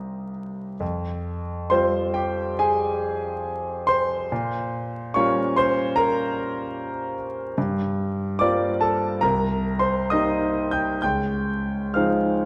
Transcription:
0.00 0.74 C2 soft
0.00 0.74 G3 soft
0.00 0.75 A#3 soft
0.00 0.75 C4 soft
0.00 0.76 D#4 soft
0.00 0.31 G4 soft
0.00 0.76 G5 soft
0.00 0.78 A#5 soft
0.00 0.79 C6 soft
0.00 0.81 D#6 soft
0.80 1.70 F2 soft
1.70 4.26 G3 soft
1.70 4.26 C4 soft
1.70 4.26 F4 soft
1.70 2.13 C5 medium
1.70 2.16 C6 medium
2.14 2.57 G4 soft
2.14 2.59 G5 medium
2.59 3.84 G#4 medium
2.59 3.88 G#5 medium
3.87 5.11 C5 medium
3.87 5.14 C6 medium
4.32 5.13 A#2 medium
5.14 7.53 G3 soft
5.14 7.53 A#3 soft
5.14 7.53 C#4 soft
5.14 7.53 F4 soft
5.14 5.54 C#5 medium
5.14 5.56 C#6 medium
5.57 5.94 C5 medium
5.57 5.96 C6 medium
5.96 7.12 A#4 medium
5.96 7.15 A#5 medium
7.58 8.39 G2 medium
8.39 9.19 G3 soft
8.39 9.19 A#3 soft
8.39 9.19 C4 soft
8.39 9.19 F4 soft
8.39 8.79 D5 medium
8.39 8.81 D6 medium
8.81 9.20 A4 medium
8.81 9.22 A5 medium
9.21 10.08 C2 soft
9.21 9.76 A#4 medium
9.21 9.80 A#5 medium
9.79 10.08 C5 medium
9.79 10.10 C6 medium
10.10 10.99 G3 soft
10.10 10.99 A#3 soft
10.10 10.99 C4 soft
10.10 11.00 D#4 soft
10.10 10.68 D#5 medium
10.10 10.71 D#6 medium
10.71 11.01 G5 medium
10.71 11.00 G6 medium
11.02 11.93 C#2 soft
11.02 11.92 G5 medium
11.02 11.95 G6 medium
11.94 12.45 F3 soft
11.94 12.45 G#3 soft
11.94 12.45 C4 soft
11.94 12.45 D#4 soft
11.94 12.45 F5 soft
11.94 12.45 F6 medium

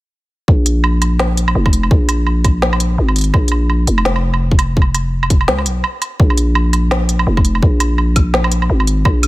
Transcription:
0.48 1.54 A#1 loud
0.48 kick loud
0.66 closed hi-hat medium
0.84 low woodblock medium
1.02 closed hi-hat medium
1.02 low woodblock medium
1.19 snare loud
1.19 low woodblock medium
1.37 closed hi-hat medium
1.48 low woodblock medium
1.55 1.90 F1 loud
1.66 kick loud
1.66 low woodblock medium
1.73 closed hi-hat medium
1.83 low woodblock soft
1.91 2.97 A#1 loud
1.91 kick loud
2.09 closed hi-hat medium
2.09 low woodblock medium
2.27 low woodblock medium
2.44 kick loud
2.44 closed hi-hat medium
2.44 low woodblock soft
2.62 snare loud
2.73 low woodblock medium
2.80 closed hi-hat medium
2.98 3.33 G#1 medium
3.09 low woodblock soft
3.16 closed hi-hat medium
3.18 closed hi-hat medium
3.21 closed hi-hat soft
3.24 closed hi-hat soft
3.34 3.87 A#1 loud
3.34 kick loud
3.34 low woodblock medium
3.48 closed hi-hat medium
3.48 low woodblock medium
3.70 low woodblock soft
3.87 5.50 F1 medium
3.87 closed hi-hat medium
3.98 low woodblock medium
4.05 snare loud
4.16 low woodblock soft
4.34 low woodblock medium
4.51 kick loud
4.59 closed hi-hat medium
4.59 low woodblock medium
4.77 kick loud
4.82 low woodblock soft
4.95 closed hi-hat medium
4.95 low woodblock soft
5.23 low woodblock medium
5.30 kick loud
5.30 closed hi-hat medium
5.41 low woodblock soft
5.48 5.67 C#2 loud
5.48 snare loud
5.59 low woodblock soft
5.66 5.83 B1 loud
5.66 closed hi-hat medium
5.84 low woodblock medium
6.02 closed hi-hat medium
6.02 low woodblock soft
6.20 7.26 A#1 loud
6.20 kick loud
6.30 low woodblock soft
6.38 closed hi-hat medium
6.55 low woodblock medium
6.73 closed hi-hat medium
6.73 low woodblock soft
6.91 snare loud
6.91 low woodblock soft
7.09 closed hi-hat medium
7.19 low woodblock medium
7.27 7.62 F1 loud
7.37 kick loud
7.37 low woodblock soft
7.45 closed hi-hat medium
7.55 low woodblock soft
7.62 8.69 A#1 loud
7.62 kick loud
7.80 closed hi-hat medium
7.80 low woodblock medium
7.98 low woodblock soft
8.16 kick medium
8.16 closed hi-hat medium
8.16 low woodblock soft
8.34 snare loud
8.44 low woodblock medium
8.52 closed hi-hat medium
8.62 low woodblock soft
8.70 9.04 G#1 medium
8.80 low woodblock medium
8.87 closed hi-hat medium
9.05 9.28 A#1 loud
9.05 kick loud
9.05 low woodblock medium
9.23 closed hi-hat medium
9.23 low woodblock medium

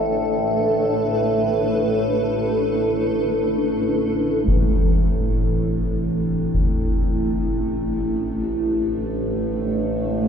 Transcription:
0.00 4.46 A1 medium
0.00 4.45 A2 medium
0.00 10.28 A3 medium
0.00 10.28 D4 medium
0.00 8.04 A4 medium
0.00 4.48 B4 medium
0.00 0.11 C5 medium
4.46 10.28 A1 medium
4.46 10.28 A2 medium
4.46 10.28 C3 medium
4.46 concert bass drum medium
6.07 10.28 G4 medium
6.54 concert bass drum soft
8.99 10.28 C5 medium

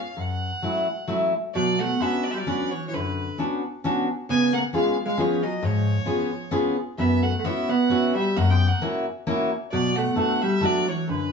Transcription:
0.00 0.21 F5 medium
0.17 0.51 F#2 soft
0.17 1.10 F#5 medium
0.62 0.86 F#3 soft
0.62 0.86 A3 soft
0.62 0.86 C#4 soft
0.62 0.87 E4 soft
1.07 1.32 F#3 medium
1.07 1.32 A3 medium
1.07 1.32 C#4 soft
1.07 1.33 E4 medium
1.55 1.90 B2 medium
1.55 1.80 F#3 medium
1.55 1.81 D5 medium
1.80 2.00 A3 medium
1.80 2.04 F#5 medium
2.00 2.26 B3 medium
2.00 2.25 B3 medium
2.00 2.25 C#4 soft
2.00 2.25 D4 soft
2.00 2.26 F#4 medium
2.00 2.25 E5 medium
2.24 2.33 F#3 medium
2.24 2.33 D5 medium
2.31 2.40 G3 medium
2.31 2.40 E5 medium
2.38 2.72 F#3 medium
2.38 2.73 D5 medium
2.46 2.71 B3 soft
2.46 2.71 C#4 medium
2.46 2.71 D4 soft
2.46 2.71 F#4 medium
2.71 2.87 E3 medium
2.71 2.87 C#5 medium
2.88 2.93 E3 medium
2.88 2.95 C#5 medium
2.93 3.28 F#2 medium
2.93 3.39 D3 medium
2.93 3.39 B4 medium
3.38 3.62 B3 soft
3.38 3.62 C#4 soft
3.38 3.62 D4 medium
3.38 3.62 F#4 soft
3.84 4.07 B3 medium
3.84 4.07 C#4 medium
3.84 4.07 D4 medium
3.84 4.08 F#4 medium
4.29 4.62 C#3 medium
4.29 4.51 B3 medium
4.29 4.51 G#5 loud
4.53 4.59 A#3 medium
4.53 4.63 F#5 medium
4.73 4.96 G#3 medium
4.73 4.96 B3 medium
4.73 4.96 C#4 medium
4.73 4.96 F4 medium
4.73 4.97 G#4 medium
4.73 4.95 F5 medium
5.06 5.20 G#3 medium
5.06 5.22 F5 medium
5.17 5.43 F3 medium
5.17 5.40 B3 medium
5.17 5.40 C#4 medium
5.17 5.41 F4 soft
5.17 5.41 G#4 medium
5.17 5.44 C#5 medium
5.43 5.64 F#3 medium
5.43 5.66 D#5 medium
5.63 5.96 G#2 medium
5.63 6.54 F3 medium
5.63 6.54 C#5 medium
6.06 6.29 B3 soft
6.06 6.29 C#4 soft
6.06 6.30 F4 medium
6.06 6.30 G#4 medium
6.51 6.75 B3 medium
6.51 6.76 C#4 medium
6.51 6.76 F4 medium
6.51 6.76 G#4 medium
6.98 7.33 F#2 medium
6.98 7.23 B3 medium
6.98 7.24 E5 loud
7.23 7.38 A3 medium
7.23 7.39 F#5 medium
7.39 7.45 A3 soft
7.39 7.48 F#5 medium
7.44 7.68 B3 medium
7.44 7.68 C#4 soft
7.44 7.68 E4 soft
7.44 7.69 F#4 medium
7.44 7.71 E5 medium
7.69 8.15 B3 medium
7.69 8.15 F#5 medium
7.89 8.13 B3 medium
7.89 8.14 C#4 medium
7.89 8.14 E4 soft
7.89 8.14 F#4 medium
8.15 8.36 G3 medium
8.15 8.39 E5 medium
8.36 8.71 F#2 medium
8.36 8.51 A#3 medium
8.36 8.52 F#5 medium
8.51 8.66 B3 medium
8.51 8.69 G5 medium
8.66 8.82 A#3 medium
8.66 8.82 F#5 medium
8.82 9.05 A#3 medium
8.82 9.05 C#4 soft
8.82 9.05 E4 medium
8.82 9.05 F#4 medium
9.27 9.50 A#3 medium
9.27 9.50 C#4 medium
9.27 9.50 E4 medium
9.27 9.50 F#4 medium
9.72 10.06 B2 medium
9.72 9.93 F#3 medium
9.72 9.98 D5 medium
9.96 10.17 A3 medium
9.96 10.17 F#5 medium
10.15 10.39 A3 soft
10.15 10.39 A3 medium
10.15 10.39 B3 medium
10.15 10.40 D4 medium
10.15 10.40 F#4 medium
10.20 10.43 F#5 medium
10.42 10.65 G3 medium
10.42 10.67 E5 loud
10.61 10.84 A3 medium
10.61 10.85 B3 soft
10.61 10.85 D4 soft
10.61 10.85 F#4 medium
10.65 10.89 F#3 medium
10.65 10.90 D5 loud
10.89 11.09 E3 medium
10.89 11.09 C#5 medium
11.07 11.32 F#2 medium
11.07 11.32 D3 medium
11.07 11.32 B4 medium

